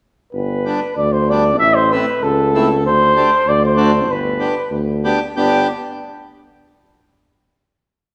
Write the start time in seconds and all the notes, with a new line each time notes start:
0.33 G1 B4
0.65 G3 B3 D4
0.96 D2 D5
1.12 C5
1.30 G3 B3 D4 D5
1.58 A1 E5
1.75 C5
1.92 A3 C4 E4 B4
2.22 C#2 A4
2.54 A3 C4 E4
2.85 D2 C5
3.16 A3 D4 G4
3.46 D2 D5
3.66 C5
3.77 A3 D4 F#4
4.09 G1 B4
4.39 B3 D4 G4
4.70 D2
5.04 B3 D4 G4
5.36 G1 B3 D4 G4